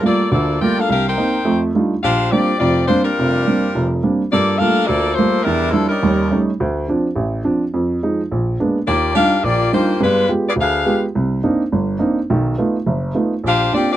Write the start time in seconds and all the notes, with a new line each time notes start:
0.02 G3 A3 A#3 F4 A4 D5
0.06 F4
0.31 D2 D3 A#3 F4 A4 D5
0.61 G3 A3 A#3 F4 A#4 D5 G5
0.79 D4 A4 A#4 F5
0.89 C2 D4 G4 A#4 F5
1.08 D#4 A#4 C5 G5
1.17 A#3 C4 D#4
1.45 F2 A3
1.75 G3 A3 D4 D#4 F4
2.03 A#1 D4 G4 C5 F5
2.30 G3 A#3 C4 D4 F4 G4 D5
2.59 F1 F2 C4 F4 G4 D5
2.87 G3 A#3 C4 D4 F4 C5
3.04 G3 D4 F4 A#4
3.19 F1 F2
3.47 G3 A#3 C4 D4
3.75 F1 F2
4.03 G3 A#3 C4 D4
4.31 G2 A#3 F4 A4 D5
4.58 G3 A3 A#3 D4 F4 A4 A#4 F5
4.86 D2 A#3 F4 A4 D5
5.13 A#3 F4 A4 C5
5.18 G3 A3 A#3 F4
5.43 E2 G3 D4 E4 A#4
5.71 F3 G3 A#3 D4 E4 A4
5.88 G3 C#4 D#4 A#4
6.03 D#2 G3
6.31 G3 A3 C#4 D#4
6.60 D2
6.88 F3 C4 D4
7.16 A1
7.44 F3 C4 D4
7.74 F2
8.03 F3 G#3 D#4
8.31 A#1
8.60 G#3 A#3 B3 D4
8.86 D#2 A#3 F4 G4 D5
9.14 G3 D4 D#4 F4 G4 A#4 F5
9.43 A#1 A#3 F4 G4 D5
9.73 G3 A#3 D4 D#4 F4 G4 C5
10.01 G2 G#3 B3 D4 F4 B4
10.29 G#3 B3 F4 G4
10.48 B3 F4 G#4 D5
10.56 D2
10.60 D4 G#4 B4 F5
10.86 G#3 B3 F4 G4
11.15 C2
11.44 A#3 C4 D4 D#4
11.72 G1
11.99 A#3 C4 D4 D#4
12.30 B1 D#3
12.58 A3 B3 D#4 F4
12.86 F#1
13.15 A3 B3 D#4 F4
13.44 A#1 D4 G4 C5 F5
13.72 A#3 C4 D4 F4 G4 D5
13.92 C4 F4 G4 D5